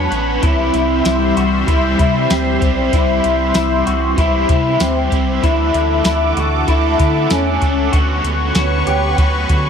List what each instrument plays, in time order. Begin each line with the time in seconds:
Already playing: overdriven electric guitar F#3 B3 C#4, clean electric guitar D4, analog synth pad B4 C#5 F#5 B5
0.10 sub bass A1, overdriven electric guitar C#4 F#4, closed hi-hat
0.16 overdriven electric guitar B3
0.39 sub bass C2, overdriven electric guitar C3 E3, clean electric guitar E4, kick, closed hi-hat
0.43 analog synth pad G3 C5 E5 C6, overdriven electric guitar C4 E4
0.48 overdriven electric guitar G4
0.74 sub bass C2, closed hi-hat
1.05 sub bass C2, clean electric guitar E4, snare, closed hi-hat, tambourine
1.36 sub bass C2, clean electric guitar F#4, closed hi-hat
1.66 sub bass C2, overdriven electric guitar E3 C4 E4, clean electric guitar E4, kick, closed hi-hat
1.72 overdriven electric guitar G4
1.99 sub bass C3, clean electric guitar E4, kick, closed hi-hat
2.30 sub bass D2, clean electric guitar C4, snare, closed hi-hat, tambourine
2.61 sub bass B1, overdriven electric guitar E4 G4, kick, closed hi-hat
2.66 overdriven electric guitar C4
2.91 sub bass C2, overdriven electric guitar C3 E3, clean electric guitar E4, kick, closed hi-hat
2.95 overdriven electric guitar C4 E4 G4
3.24 sub bass C2, closed hi-hat
3.54 sub bass C2, clean electric guitar E4, snare, closed hi-hat, tambourine
3.86 sub bass C2, clean electric guitar F#4, closed hi-hat
4.16 sub bass C2, overdriven electric guitar E3 C4 E4, clean electric guitar E4, kick, closed hi-hat
4.22 overdriven electric guitar G4
4.49 sub bass C3, clean electric guitar E4, kick, closed hi-hat
4.80 sub bass D2, clean electric guitar C4, snare, closed hi-hat, tambourine
5.10 sub bass C2, overdriven electric guitar E4 G4, kick, closed hi-hat
5.16 overdriven electric guitar C4
5.40 sub bass D2, overdriven electric guitar D3 E3, clean electric guitar E4, analog synth pad A4 F#5 D6, kick, closed hi-hat
5.45 overdriven electric guitar A3 D4
5.49 overdriven electric guitar F#4
5.74 sub bass D2, closed hi-hat
6.05 sub bass D2, clean electric guitar E4, snare, closed hi-hat, tambourine
6.36 sub bass D2, clean electric guitar F#4, closed hi-hat
6.66 sub bass D2, overdriven electric guitar E3 A3, clean electric guitar E4, kick, closed hi-hat
6.70 overdriven electric guitar D4 F#4
6.99 sub bass D3, clean electric guitar E4, kick, closed hi-hat
7.30 sub bass E2, clean electric guitar C#4, snare, closed hi-hat, tambourine
7.60 sub bass C#2, overdriven electric guitar D4 F#4, kick, closed hi-hat
7.66 overdriven electric guitar A3
7.91 sub bass D2, overdriven electric guitar D3, clean electric guitar F#4, analog synth pad B4 C#5 C#6, kick, closed hi-hat
7.96 overdriven electric guitar B3 C#4 F#4
8.24 sub bass D2, closed hi-hat
8.55 sub bass D2, clean electric guitar F#4, snare, closed hi-hat, tambourine
8.87 sub bass D2, clean electric guitar G4, closed hi-hat
9.17 sub bass D2, overdriven electric guitar F#3 B3, clean electric guitar F#4, kick, closed hi-hat
9.21 overdriven electric guitar C#4 F#4
9.49 sub bass D3, clean electric guitar F#4, kick, closed hi-hat